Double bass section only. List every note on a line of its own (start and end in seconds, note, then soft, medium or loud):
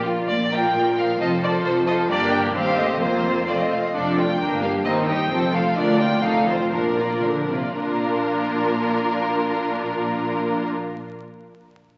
0.27 0.68 A#1 medium
0.73 1.13 A#1 soft
1.18 1.58 F1 soft
1.63 2.03 F1 medium
2.08 2.50 G1 medium
2.53 3.00 D#2 medium
3.00 3.73 F1 soft
3.94 4.34 F1 soft
4.39 4.80 G1 soft
4.84 5.25 D#2 soft
5.30 5.71 F1 soft
5.76 6.17 D2 medium
6.22 6.66 F1 medium
6.72 7.18 A#1 soft
7.24 7.71 A#1 soft
7.77 10.71 A#1 soft